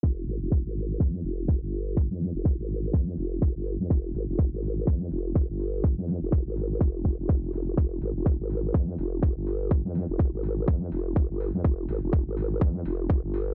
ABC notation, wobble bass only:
X:1
M:4/4
L:1/16
Q:"Swing 16ths" 1/4=124
K:Fm
V:1 name="Wobble bass" clef=bass
F,,,2 A,,, F,,,2 A,,,3 F,,2 F,,,3 G,,,3- | G,,, F,,2 F,,,2 A,,,3 F,,2 F,,,3 G,,,2 F,, | F,,,2 A,,, F,,,2 A,,,3 F,,2 F,,,3 G,,,3- | G,,, F,,2 F,,,2 A,,,3 F,,,3 F,,,3 F,,,2 |
F,,,2 A,,, F,,,2 A,,,3 F,,2 F,,,3 G,,,3- | G,,, F,,2 F,,,2 A,,,3 F,,2 F,,,3 G,,,2 F,, | F,,,2 A,,, F,,,2 A,,,3 F,,2 F,,,3 G,,,3 |]